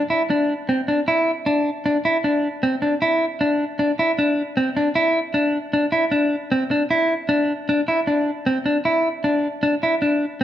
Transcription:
0.10 E4
0.30 D4
0.69 C4
0.88 D4
1.08 E4
1.46 D4
1.86 D4
2.05 E4
2.24 D4
2.63 C4
2.82 D4
3.02 E4
3.41 D4
3.79 D4
3.99 E4
4.19 D4
4.57 C4
4.77 D4
4.95 E4
5.34 D4
5.73 D4
5.92 E4
6.12 D4
6.52 C4
6.71 D4
6.91 E4
7.29 D4
7.69 D4
7.88 E4
8.07 D4
8.46 C4
8.66 D4
8.85 E4
9.24 D4
9.63 D4
9.83 E4
10.02 D4
10.41 C4

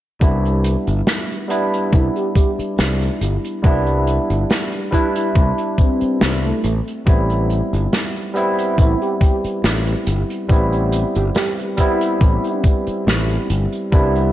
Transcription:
0.20 C2 G3 B3 D4 E4, kick, closed hi-hat
0.45 closed hi-hat
0.64 closed hi-hat
0.87 G1, closed hi-hat
1.07 snare, closed hi-hat
1.31 closed hi-hat
1.48 G3 B3 D4 E4, closed hi-hat
1.74 closed hi-hat
1.93 C2 E4, kick, closed hi-hat
2.16 G4, closed hi-hat
2.35 G4, kick, closed hi-hat
2.59 muted fingered electric bass stroke, closed hi-hat
2.78 C2, snare, closed hi-hat
3.01 closed hi-hat
3.21 G1, closed hi-hat
3.45 closed hi-hat
3.63 C2 G3 B3 D4 E4, kick, closed hi-hat
3.87 closed hi-hat
4.07 closed hi-hat
4.30 G1, closed hi-hat
4.50 snare, closed hi-hat
4.72 closed hi-hat
4.91 G3 D4 E4 B4, kick, closed hi-hat
5.16 E4, closed hi-hat
5.35 C2, kick, closed hi-hat
5.58 closed hi-hat
5.78 C4, kick, closed hi-hat
6.01 muted fingered electric bass stroke, closed hi-hat
6.21 C2, snare, closed hi-hat
6.44 A3, closed hi-hat
6.64 A1, closed hi-hat
6.88 closed hi-hat
7.05 A1 G3 B3 C4 E4, kick, closed hi-hat
7.30 closed hi-hat
7.50 closed hi-hat
7.73 G1, closed hi-hat
7.93 snare, closed hi-hat
8.16 closed hi-hat
8.34 G3 B3 C4 E4, closed hi-hat
8.59 closed hi-hat
8.78 A1 E4, kick, closed hi-hat
9.01 G4, closed hi-hat
9.21 G4, kick, closed hi-hat
9.44 muted fingered electric bass stroke, closed hi-hat
9.64 A1, snare, closed hi-hat
9.87 closed hi-hat
10.07 G1, closed hi-hat
10.30 closed hi-hat
10.48 A1 G3 B3 C4 E4, kick, closed hi-hat
10.73 closed hi-hat
10.92 closed hi-hat
11.15 G1 G4, closed hi-hat
11.35 G4, snare, closed hi-hat
11.59 closed hi-hat
11.77 G3 B3 C4 E4, kick, closed hi-hat
12.01 closed hi-hat
12.21 A1, kick, closed hi-hat
12.44 closed hi-hat
12.64 kick, closed hi-hat
12.87 muted fingered electric bass stroke, closed hi-hat
13.07 A1, snare, closed hi-hat
13.30 closed hi-hat
13.50 G1, closed hi-hat
13.73 closed hi-hat
13.92 C2 G3 B3 D4 E4, kick, closed hi-hat
14.16 closed hi-hat

